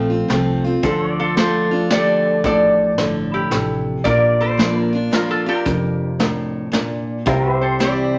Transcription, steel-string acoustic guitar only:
Already playing: F2 C4
0.10 C4 F4
0.28 F3 A3 C4 F4
0.64 C4 F4
0.83 D3
1.37 D3 A3 D4 F4
1.71 D4 F4
1.90 D3 A3 D4 F4
2.44 A2
2.98 D3
3.51 C3
4.05 A#2
4.57 F3 A#3 D4 F4
4.93 D4 F4
5.11 F3 A#3 D4 F4
5.46 D4 F4
5.66 F2
6.20 A2
6.72 A#2
7.26 C3
7.79 E3 G3 C4 E4

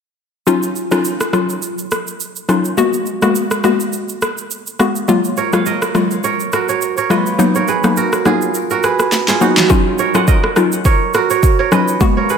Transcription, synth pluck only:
0.47 F#3 C#4 D#4 F4
0.91 F#3 C#4 D#4 F4
1.33 F#3 C#4 D#4 F4
2.49 F#3 C#4 D#4 F4
2.77 G#3 A#3 B3 F#4
3.22 G#3 A#3 B3 F#4
3.64 G#3 A#3 B3 F#4
4.79 G#3 A#3 B3 F#4
5.08 F#3 G#3 A#3 F4
5.53 F#3 G#3 A#3 F4
5.95 F#3 G#3 A#3 F4
7.10 F#3 G#3 A#3 F4
7.39 F#3 A#3 B3 D#4
7.84 F#3 A#3 B3 D#4
8.25 F#3 A#3 B3 D#4
9.41 F#3 A#3 B3 D#4
9.70 F#3 C#4 D#4 F4
10.14 F#3 C#4 D#4 F4
10.56 F#3 C#4 D#4 F4
11.72 F#3 C#4 D#4 F4
12.01 G#3 A#3 B3 F#4

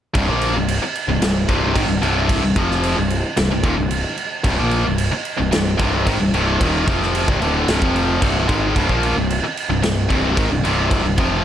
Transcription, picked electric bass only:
0.15 C1
0.28 A#1
0.55 C1
0.81 muted picked electric bass stroke
1.08 C1
1.20 C1
1.49 C1
1.76 G#1
1.87 C1
2.01 C1
2.43 C1
2.56 F1
2.97 C1
3.38 C1
3.52 C1
3.63 D#1
3.78 C1
4.44 C1
4.59 A#1
4.86 C1
5.13 muted picked electric bass stroke
5.40 C1
5.54 C1
5.80 C1
6.06 G#1
6.20 C1
6.33 C1
6.61 D#1
6.87 F1
7.28 C1
7.40 D1
7.68 C1
7.82 F1
8.22 C1
8.49 G#1
8.76 C1
8.89 A#1
9.16 C1
9.43 muted picked electric bass stroke
9.69 C1
9.83 C1
10.10 C1
10.38 G#1
10.50 C1
10.63 C1
11.03 C1
11.18 F1

